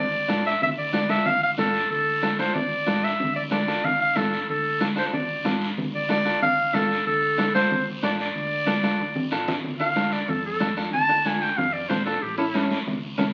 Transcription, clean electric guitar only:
0.28 0.51 D4 medium
0.28 0.52 F4 medium
0.28 0.52 A4 medium
0.93 0.99 D4 medium
0.93 0.99 F4 medium
0.93 0.99 A4 medium
1.09 1.27 D4 medium
1.09 1.27 F4 medium
1.09 1.27 A4 medium
1.58 1.81 D4 medium
1.58 1.81 F4 medium
1.58 1.81 A4 medium
2.23 2.28 D4 medium
2.23 2.29 F4 medium
2.23 2.29 A4 medium
2.39 2.56 D4 medium
2.39 2.56 F4 medium
2.39 2.56 A4 medium
2.86 3.10 D4 medium
2.86 3.10 F4 medium
2.86 3.10 A4 medium
3.51 3.57 D4 medium
3.51 3.57 F4 medium
3.51 3.58 A4 medium
3.67 3.85 D4 medium
3.67 3.85 F4 medium
3.67 3.85 A4 medium
4.16 4.39 D4 medium
4.16 4.39 F4 medium
4.16 4.39 A4 medium
4.81 4.87 D4 medium
4.81 4.87 F4 medium
4.81 4.87 A4 medium
4.96 5.13 D4 medium
4.96 5.14 F4 medium
4.96 5.14 A4 medium
5.45 5.68 D4 medium
5.45 5.68 F4 medium
5.45 5.68 A4 medium
6.09 6.15 D4 medium
6.09 6.15 F4 medium
6.09 6.16 A4 medium
6.25 6.43 D4 medium
6.25 6.43 F4 medium
6.25 6.43 A4 medium
6.73 6.97 D4 medium
6.73 6.97 F4 medium
6.73 6.97 A4 medium
7.38 7.44 D4 medium
7.38 7.44 F4 medium
7.38 7.45 A4 medium
7.55 7.72 D4 medium
7.55 7.72 F4 medium
7.55 7.72 A4 medium
8.03 8.26 D4 medium
8.03 8.26 F4 medium
8.03 8.26 A4 medium
8.67 8.73 D4 medium
8.67 8.73 F4 medium
8.67 8.73 A4 medium
8.83 9.01 D4 medium
8.83 9.01 F4 medium
8.83 9.01 A4 medium
9.32 9.55 D4 medium
9.32 9.55 F4 medium
9.32 9.55 A4 medium
9.80 9.86 D4 medium
9.80 9.86 F4 medium
9.80 9.86 A4 medium
9.96 10.19 D4 medium
9.96 10.19 F4 medium
9.96 10.19 A4 medium
10.60 10.67 D4 medium
10.60 10.67 F4 medium
10.60 10.67 A4 medium
10.77 10.89 D4 medium
10.77 10.89 F4 medium
10.77 10.89 A4 medium
11.09 11.15 D4 medium
11.09 11.15 F4 medium
11.09 11.16 A4 medium
11.25 11.48 D4 medium
11.25 11.49 F4 medium
11.25 11.49 A4 medium
11.90 11.96 D4 medium
11.90 11.96 F4 medium
11.90 11.96 A4 medium
12.06 12.18 D4 medium
12.06 12.18 F4 medium
12.06 12.18 A4 medium
12.38 12.44 C#4 medium
12.38 12.44 E4 medium
12.38 12.44 A4 medium
12.54 12.77 C#4 medium
12.54 12.77 E4 medium
12.54 12.78 A4 medium
13.18 13.24 C#4 medium
13.18 13.25 E4 medium
13.18 13.25 A4 medium

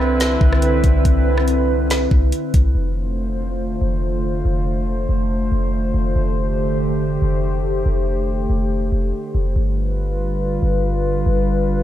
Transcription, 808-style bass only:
0.00 0.37 C2 loud
0.41 0.82 C2 loud
0.84 1.04 C2 loud
1.05 2.07 C2 loud
2.11 2.32 C2 loud
2.54 2.74 C2 loud
2.75 3.78 F1 loud
3.81 4.43 F1 medium
4.45 5.07 F1 loud
5.09 5.50 F1 loud
5.52 5.93 F1 loud
5.94 6.15 F1 loud
6.16 7.18 F1 loud
7.22 7.83 F1 loud
7.86 8.47 F1 loud
8.50 8.91 F1 loud
8.92 9.13 F1 loud
9.35 9.55 F1 loud
9.56 10.58 G1 loud
10.62 11.24 G1 medium
11.26 11.83 G1 loud

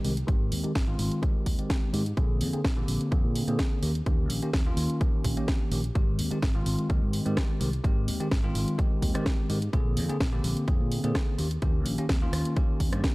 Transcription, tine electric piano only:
0.04 0.12 D#3 medium
0.04 0.12 G#3 medium
0.04 0.12 C4 medium
0.04 0.13 G4 medium
0.27 0.61 D#3 loud
0.27 0.61 G#3 medium
0.27 0.61 C4 medium
0.27 0.61 G4 loud
0.63 0.71 D#3 medium
0.63 0.71 G#3 medium
0.63 0.71 C4 medium
0.63 0.71 G4 medium
0.87 1.20 D#3 medium
0.87 1.20 G#3 medium
0.87 1.20 C4 medium
0.87 1.20 F4 loud
1.22 1.56 D#3 medium
1.22 1.56 G#3 medium
1.22 1.56 C4 medium
1.22 1.56 G4 medium
1.58 1.91 D#3 medium
1.58 1.91 G#3 medium
1.58 1.91 C4 medium
1.58 1.91 G4 medium
1.93 2.01 D#3 medium
1.93 2.01 G#3 medium
1.93 2.01 C4 medium
1.93 2.02 G4 medium
2.17 2.50 D3 medium
2.17 2.50 A#3 medium
2.17 2.50 C4 medium
2.17 2.51 G#4 loud
2.53 2.60 D3 medium
2.53 2.60 A#3 medium
2.53 2.60 C4 medium
2.53 2.60 G#4 medium
2.76 3.09 D3 loud
2.76 3.09 A#3 medium
2.76 3.09 C4 medium
2.76 3.09 G4 loud
3.11 3.45 D3 medium
3.11 3.45 A#3 medium
3.11 3.45 C4 medium
3.11 3.45 G#4 loud
3.48 3.80 D3 medium
3.48 3.80 A#3 medium
3.48 3.80 C4 medium
3.48 3.80 G#4 medium
3.82 3.90 D#3 medium
3.82 3.90 A#3 medium
3.82 3.91 C#4 medium
3.82 3.91 G4 medium
4.06 4.39 D#3 medium
4.06 4.39 A#3 medium
4.06 4.40 C#4 medium
4.06 4.40 G4 loud
4.42 4.49 D#3 medium
4.42 4.49 A#3 medium
4.42 4.50 C#4 medium
4.42 4.50 G4 medium
4.66 4.98 D#3 loud
4.66 4.98 A#3 medium
4.66 4.98 C#4 medium
4.66 4.98 F4 loud
5.01 5.34 D#3 medium
5.01 5.34 A#3 medium
5.01 5.34 C#4 medium
5.01 5.34 G4 loud
5.37 5.69 D#3 medium
5.37 5.69 A#3 medium
5.37 5.69 C#4 medium
5.37 5.69 G4 medium
5.72 5.79 D#3 medium
5.72 5.80 A#3 medium
5.72 5.80 C#4 medium
5.72 5.80 G4 medium
5.95 6.28 D#3 medium
5.95 6.28 G#3 medium
5.95 6.28 C4 medium
5.95 6.29 G4 loud
6.31 6.38 D#3 medium
6.31 6.38 G#3 medium
6.31 6.38 C4 medium
6.31 6.38 G4 medium
6.55 6.87 D#3 loud
6.55 6.87 G#3 medium
6.55 6.87 C4 medium
6.55 6.87 F4 loud
6.90 7.23 D#3 medium
6.90 7.23 G#3 medium
6.90 7.23 C4 medium
6.90 7.23 G4 medium
7.25 7.58 D#3 medium
7.25 7.58 G#3 medium
7.25 7.58 C4 medium
7.25 7.58 G4 medium
7.60 7.68 D#3 medium
7.60 7.68 G#3 medium
7.60 7.68 C4 medium
7.60 7.68 G4 medium
7.84 8.17 D#3 medium
7.84 8.17 G#3 medium
7.84 8.17 C4 medium
7.84 8.17 G4 loud
8.20 8.27 D#3 medium
8.20 8.27 G#3 medium
8.20 8.27 C4 medium
8.20 8.28 G4 medium
8.43 8.76 D#3 loud
8.43 8.76 G#3 medium
8.43 8.76 C4 medium
8.43 8.76 F4 loud
8.78 9.11 D#3 medium
8.78 9.12 G#3 medium
8.78 9.12 C4 medium
8.78 9.12 G4 loud
9.14 9.47 D#3 medium
9.14 9.47 G#3 medium
9.14 9.47 C4 medium
9.14 9.47 G4 medium
9.49 9.57 D#3 medium
9.49 9.57 G#3 medium
9.49 9.57 C4 medium
9.49 9.58 G4 medium
9.73 10.06 D3 loud
9.73 10.06 A#3 medium
9.73 10.06 C4 medium
9.73 10.07 G#4 loud
10.09 10.16 D3 medium
10.09 10.16 A#3 medium
10.09 10.16 C4 medium
10.09 10.16 G#4 medium
10.32 10.65 D3 medium
10.32 10.65 A#3 medium
10.32 10.65 C4 medium
10.32 10.65 G4 loud
10.68 11.01 D3 medium
10.68 11.01 A#3 medium
10.68 11.01 C4 medium
10.68 11.01 G#4 loud
11.04 11.36 D3 medium
11.04 11.36 A#3 medium
11.04 11.36 C4 medium
11.04 11.36 G#4 medium
11.38 11.46 D#3 medium
11.38 11.46 A#3 medium
11.38 11.47 C#4 medium
11.38 11.47 G4 medium
11.62 11.95 D#3 loud
11.62 11.95 A#3 medium
11.62 11.95 C#4 medium
11.62 11.96 G4 loud
11.98 12.05 D#3 medium
11.98 12.05 A#3 medium
11.98 12.05 C#4 medium
11.98 12.06 G4 medium
12.22 12.54 D#3 medium
12.22 12.54 A#3 medium
12.22 12.54 C#4 medium
12.22 12.54 F4 loud
12.56 12.90 D#3 medium
12.56 12.90 A#3 medium
12.56 12.90 C#4 medium
12.56 12.90 G4 loud
12.93 13.15 D#3 medium
12.93 13.15 A#3 medium
12.93 13.15 C#4 medium
12.93 13.15 G4 medium

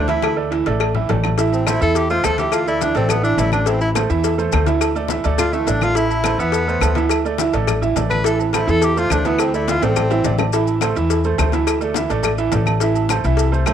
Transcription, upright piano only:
0.08 0.32 E3 medium
0.08 0.32 E4 medium
0.08 0.32 E5 medium
0.36 0.49 A3 medium
0.36 0.49 A4 medium
0.36 0.49 D5 medium
0.51 0.63 E3 medium
0.51 0.63 E4 medium
0.51 0.64 E5 medium
0.66 0.90 A3 medium
0.66 0.90 A4 medium
0.66 0.90 D5 medium
0.95 1.06 E3 medium
0.95 1.07 E4 medium
0.95 1.07 E5 medium
1.09 1.33 A3 medium
1.09 1.33 A4 medium
1.09 1.33 D5 medium
1.38 1.61 E3 medium
1.38 1.61 E4 medium
1.38 1.62 E5 medium
1.67 1.78 A3 medium
1.67 1.79 A4 medium
1.67 1.79 C5 medium
1.80 2.04 E3 medium
1.80 2.04 E4 loud
1.80 2.04 E5 loud
2.10 2.21 A3 medium
2.10 2.22 A4 medium
2.10 2.22 C5 medium
2.24 2.36 A3 medium
2.24 2.36 A4 medium
2.24 2.36 C5 medium
2.38 2.62 E3 medium
2.38 2.62 E4 medium
2.38 2.62 E5 medium
2.67 2.78 A3 medium
2.67 2.79 A4 medium
2.67 2.79 D5 medium
2.81 2.93 E3 medium
2.81 2.93 E4 medium
2.81 2.93 E5 medium
2.95 3.19 A3 medium
2.95 3.19 A4 medium
2.95 3.19 D5 medium
3.23 3.35 E3 medium
3.23 3.35 E4 medium
3.23 3.36 E5 medium
3.38 3.62 A3 medium
3.38 3.62 A4 medium
3.38 3.62 D5 medium
3.67 3.90 E3 medium
3.67 3.90 E4 medium
3.67 3.91 E5 medium
3.95 4.07 A3 medium
3.95 4.07 A4 medium
3.95 4.07 C5 medium
4.09 4.33 E3 medium
4.09 4.33 E4 medium
4.09 4.33 E5 loud
4.38 4.50 A3 medium
4.38 4.50 A4 medium
4.38 4.50 C5 medium
4.53 4.65 A3 medium
4.53 4.65 A4 medium
4.53 4.65 C5 medium
4.66 4.90 E3 medium
4.66 4.90 E4 medium
4.66 4.91 E5 medium
4.95 5.07 A3 medium
4.95 5.07 A4 medium
4.95 5.08 D5 medium
5.10 5.22 E3 medium
5.10 5.22 E4 medium
5.10 5.22 E5 medium
5.24 5.48 A3 medium
5.24 5.48 A4 medium
5.24 5.48 D5 medium
5.53 5.65 E3 medium
5.53 5.65 E4 medium
5.53 5.65 E5 medium
5.67 5.91 A3 medium
5.67 5.91 A4 medium
5.67 5.91 D5 medium
5.95 6.19 E3 medium
5.95 6.19 E4 medium
5.95 6.20 E5 medium
6.23 6.36 A3 medium
6.23 6.36 A4 medium
6.23 6.36 C5 medium
6.38 6.62 E3 medium
6.38 6.62 E4 medium
6.38 6.63 E5 medium
6.67 6.79 A3 medium
6.67 6.79 A4 medium
6.67 6.80 C5 medium
6.81 6.93 A3 medium
6.81 6.94 A4 medium
6.81 6.94 C5 medium
6.96 7.20 E3 medium
6.96 7.20 E4 medium
6.96 7.20 E5 medium
7.25 7.37 A3 medium
7.25 7.37 A4 medium
7.25 7.37 D5 medium
7.39 7.51 E3 medium
7.39 7.51 E4 medium
7.39 7.51 E5 medium
7.53 7.77 A3 medium
7.53 7.77 A4 medium
7.53 7.77 D5 medium
7.81 7.93 E3 medium
7.81 7.94 E4 medium
7.81 7.94 E5 medium
7.96 8.20 A3 medium
7.96 8.20 A4 medium
7.96 8.20 D5 medium
8.24 8.48 E3 medium
8.24 8.48 E4 medium
8.24 8.48 E5 medium
8.53 8.65 A3 medium
8.53 8.65 A4 medium
8.53 8.65 C5 medium
8.67 8.91 E3 medium
8.67 8.91 E4 loud
8.67 8.91 E5 medium
8.96 9.08 A3 medium
8.96 9.08 A4 medium
8.96 9.08 C5 medium
9.11 9.22 A3 medium
9.11 9.22 A4 medium
9.11 9.23 C5 medium
9.25 9.49 E3 loud
9.25 9.49 E4 medium
9.25 9.49 E5 medium
9.54 9.65 A3 medium
9.54 9.65 A4 medium
9.54 9.66 D5 medium
9.68 9.80 E3 medium
9.68 9.80 E4 medium
9.68 9.80 E5 medium
9.83 10.06 A3 medium
9.83 10.06 A4 medium
9.83 10.06 D5 medium
10.11 10.22 E3 medium
10.11 10.22 E4 medium
10.11 10.23 E5 medium
10.25 10.48 A3 medium
10.25 10.48 A4 medium
10.25 10.48 D5 medium
10.53 10.77 E3 medium
10.53 10.77 E4 medium
10.53 10.77 E5 medium
10.82 10.93 A3 medium
10.82 10.94 A4 medium
10.82 10.94 C5 medium
10.96 11.19 E3 medium
10.96 11.20 E4 medium
10.96 11.20 E5 loud
11.25 11.36 A3 medium
11.25 11.36 A4 medium
11.25 11.37 C5 medium
11.38 11.50 A3 medium
11.38 11.50 A4 medium
11.38 11.50 C5 medium
11.53 11.76 E3 medium
11.53 11.77 E4 medium
11.53 11.77 E5 medium
11.81 11.93 A3 medium
11.81 11.93 A4 medium
11.81 11.93 D5 medium
11.95 12.07 E3 medium
11.95 12.07 E4 medium
11.95 12.08 E5 medium
12.10 12.33 A3 medium
12.10 12.33 A4 medium
12.10 12.34 D5 medium
12.38 12.50 E3 medium
12.38 12.50 E4 medium
12.38 12.50 E5 medium
12.52 12.75 A3 medium
12.52 12.76 A4 medium
12.52 12.76 D5 medium
12.81 13.04 E3 medium
12.81 13.05 E4 medium
12.81 13.05 E5 medium
13.10 13.22 A3 medium
13.10 13.22 A4 medium
13.10 13.22 C5 medium
13.25 13.48 E3 loud
13.25 13.48 E4 medium
13.25 13.48 E5 loud
13.52 13.64 A3 medium
13.52 13.64 A4 medium
13.52 13.64 C5 medium
13.66 13.73 A3 medium
13.66 13.73 A4 medium
13.66 13.73 C5 medium

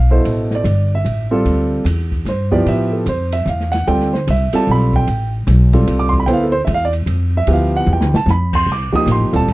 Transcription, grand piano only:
0.00 0.23 F5 medium
0.11 0.63 B2 medium
0.11 0.63 E4 medium
0.11 0.63 A4 medium
0.11 0.63 C5 medium
0.55 0.91 D5 medium
0.95 1.44 E5 medium
1.31 1.83 G3 medium
1.31 1.83 C4 medium
1.31 1.83 F4 medium
1.31 1.84 A4 medium
2.29 2.53 C5 medium
2.51 3.03 F3 medium
2.51 3.03 B3 medium
2.51 3.04 E4 medium
2.51 3.04 G4 medium
2.51 2.66 D5 medium
2.68 2.92 E5 medium
2.92 3.06 A4 medium
3.09 3.33 C5 medium
3.33 3.47 E5 medium
3.49 3.73 F5 medium
3.72 3.86 F#5 medium
3.87 4.10 G3 medium
3.87 4.10 C4 medium
3.87 4.10 F4 medium
3.87 4.10 A4 medium
3.87 4.12 G5 medium
4.13 4.27 C5 medium
4.30 4.54 E5 medium
4.53 5.05 G3 medium
4.53 5.04 C4 medium
4.53 5.05 F4 medium
4.53 5.05 A4 medium
4.53 4.68 A5 medium
4.71 4.94 B5 loud
4.96 5.32 G5 medium
5.73 6.25 G3 medium
5.73 6.25 C4 medium
5.73 6.25 F4 medium
5.73 6.25 A4 medium
5.99 6.12 D6 medium
6.09 6.12 C6 medium
6.20 6.25 B5 medium
6.26 6.50 B3 medium
6.26 6.51 E4 medium
6.26 6.42 A4 medium
6.26 6.51 C5 medium
6.26 6.29 G5 medium
6.33 6.43 F5 medium
6.44 6.54 A4 medium
6.52 6.60 C5 medium
6.65 6.69 E5 medium
6.74 6.83 F5 loud
6.85 6.91 D5 medium
7.37 7.49 E5 medium
7.47 8.08 F3 medium
7.47 8.08 B3 medium
7.47 8.08 E4 medium
7.47 8.08 G4 medium
7.53 7.75 F5 medium
7.77 7.89 F#5 medium
7.93 8.15 G5 medium
8.16 8.29 A5 loud
8.30 8.54 B5 medium
8.55 8.68 C6 loud
8.72 8.95 D6 medium
8.92 9.30 F3 medium
8.92 9.30 A#3 medium
8.92 9.30 D#4 medium
8.92 9.30 G4 medium
8.92 9.08 D#6 loud
9.12 9.34 C6 medium
9.33 9.46 G3 medium
9.33 9.46 C4 medium
9.33 9.46 F4 medium
9.33 9.46 A4 medium
9.33 9.48 A5 loud

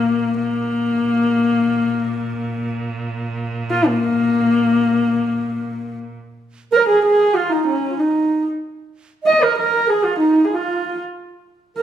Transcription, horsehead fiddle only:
0.00 0.37 A#3 loud
0.38 2.72 A#3 medium
3.71 3.89 F4 medium
3.87 5.96 A#3 loud
6.73 6.87 A#4 medium
6.88 7.03 G#4 medium
7.05 7.38 G#4 medium
7.36 7.53 F4 medium
7.52 7.66 D#4 medium
7.67 8.01 C#4 medium
7.99 8.46 D#4 medium
9.27 9.45 D#5 medium
9.43 9.58 A#4 medium
9.59 9.91 A#4 medium
9.89 10.06 G#4 medium
10.04 10.19 F4 medium
10.19 10.46 D#4 medium
10.44 10.56 G#4 medium
10.54 11.00 F4 medium
11.78 11.82 A#4 medium

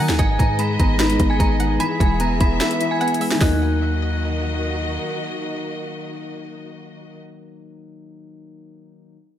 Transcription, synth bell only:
0.00 0.15 A#5 medium
0.00 0.15 A#6 medium
0.19 0.35 G#5 loud
0.19 0.35 G#6 medium
0.39 0.55 A#5 medium
0.39 0.55 A#6 medium
0.59 0.75 B5 medium
0.59 0.76 B6 medium
0.79 0.95 A#5 medium
0.79 0.96 A#6 medium
1.00 1.28 B5 medium
1.00 1.28 B6 medium
1.30 1.38 G#5 medium
1.30 1.38 G#6 medium
1.40 1.78 A#5 medium
1.40 1.78 A#6 medium
1.80 1.96 B5 loud
1.80 1.96 B6 medium
2.00 2.16 G#5 medium
2.00 2.17 G#6 medium
2.21 2.36 A#5 medium
2.21 2.37 A#6 medium
2.41 2.56 B5 medium
2.41 2.57 B6 medium
2.61 2.89 B5 medium
2.61 2.90 B6 medium
2.91 2.99 G#5 medium
2.91 2.99 G#6 medium
3.01 3.17 G#5 medium
3.01 3.17 G#6 medium
3.41 4.58 F#6 medium

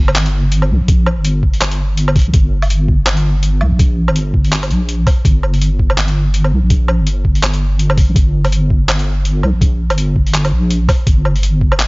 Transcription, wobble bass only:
0.00 0.72 G1 loud
0.70 0.80 C2 loud
0.81 1.19 A#1 medium
1.17 2.28 G1 medium
2.26 2.33 A#1 medium
2.34 3.63 G1 loud
3.61 3.71 C2 loud
3.72 4.10 A#1 medium
4.08 4.72 G1 medium
4.71 5.06 A#1 medium
5.25 6.54 G1 loud
6.52 6.62 C2 loud
6.63 7.01 A#1 medium
6.99 8.10 G1 medium
8.08 8.15 A#1 medium
8.16 9.45 G1 loud
9.43 9.53 C2 loud
9.54 9.91 A#1 medium
9.90 10.54 G1 medium
10.52 10.88 A#1 loud
11.07 11.87 G1 loud

